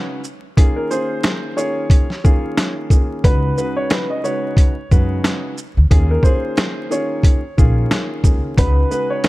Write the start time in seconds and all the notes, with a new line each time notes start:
Already playing: C#3 G#3 D#4 F#4 B4
0.24 shaker
0.57 D#3 A#3 C#4 F4 G#4, kick, closed hi-hat
0.76 A#4
0.91 D#3 A#3 C#4 F4 G#4 C5, shaker
1.23 snare, closed hi-hat
1.56 D#3 A#3 C#4 F4 G#4 C#5, shaker
1.90 kick, closed hi-hat
2.10 snare
2.24 D#3 A#3 C#4 F4 G#4, kick, shaker
2.57 snare, closed hi-hat
2.90 D#3 A#3 C#4 F4 G#4, kick, shaker
3.23 C#2 C#3 G#3 D#4 F#4 B4, kick, closed hi-hat
3.57 C#3 G#3 D#4 F#4 B4, shaker
3.77 C#5
3.90 B4, snare, closed hi-hat
4.10 D#5
4.23 C#3 G#3 D#4 F#4 B4 C#5, shaker
4.57 kick, closed hi-hat
4.91 F#2 C#3 G#3 D#4 F#4 B4, kick, shaker
5.24 snare, closed hi-hat
5.58 shaker
5.77 D2
5.90 D#2 D#3 A#3 C#4 F4 G#4, kick, closed hi-hat
6.11 A#4
6.23 D#3 A#3 C#4 F4 G#4 C5, kick, shaker
6.57 snare, closed hi-hat
6.90 D#3 A#3 C#4 F4 G#4 C#5, shaker
7.23 kick, closed hi-hat
7.57 A#1 D#3 A#3 C#4 F4 G#4, kick, shaker
7.91 snare, closed hi-hat
8.23 C#2 D#3 A#3 C#4 F4 G#4, kick, shaker
8.57 C#2 C#3 G#3 D#4 F#4 B4, kick, closed hi-hat
8.91 C#3 G#3 D#4 F#4 B4, shaker
9.10 C#5
9.24 B4, snare, closed hi-hat